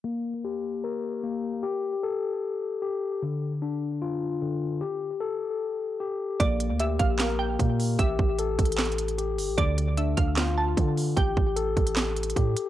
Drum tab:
HH |------------------------------------------------|------------------------------------------------|------------------------------------------------|------------------------------------------------|
CP |------------------------------------------------|------------------------------------------------|------------------------------------------------|------------------------------------------------|
SD |------------------------------------------------|------------------------------------------------|------------------------------------------------|------------------------------------------------|
BD |------------------------------------------------|------------------------------------------------|------------------------------------------------|------------------------------------------------|

HH |x-----x-----x-----x-----x-----------x-----o-----|x-----------x-----x-x-x-x-x-x-x--x--x-----o-----|x-----x-----x-----x-----x-----------x-----o-----|x-----------x-----x--x--x-----x-x-x-x-----x-----|
CP |------------------------x-----------------------|------------------------x-----------------------|------------------------x-----------------------|------------------------x-----------------------|
SD |------------------------o-----------------------|------------------------o-----------------------|------------------------o-----------------------|------------------------o-----------------------|
BD |o-----------------o-----------------o-----------|o-----o-----------o-----------------------------|o-----------------o-----------------o-----------|o-----o-----------o-----------------o-----------|